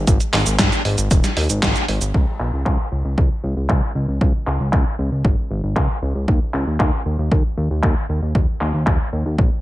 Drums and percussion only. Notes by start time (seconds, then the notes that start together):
0.07 kick, closed hi-hat, cabasa
0.20 closed hi-hat, cabasa
0.33 snare, clap, open hi-hat
0.46 closed hi-hat, cabasa
0.59 kick, snare, clap, closed hi-hat, cabasa
0.72 closed hi-hat, cabasa
0.85 open hi-hat
0.98 closed hi-hat, cabasa
1.11 kick, closed hi-hat, cabasa
1.24 snare, closed hi-hat, cabasa
1.37 open hi-hat
1.50 closed hi-hat, cabasa
1.63 kick, snare, clap, closed hi-hat, cabasa
1.76 closed hi-hat, cabasa
1.88 open hi-hat
2.01 closed hi-hat, cabasa
2.14 kick, crash
2.40 clap
2.66 kick, clap
3.18 kick
3.69 kick, clap
4.21 kick
4.47 clap
4.73 kick, clap
5.25 kick
5.76 kick, clap
6.28 kick
6.54 clap
6.80 kick, clap
7.32 kick
7.83 kick, clap
8.35 kick
8.61 clap
8.87 kick, clap
9.38 kick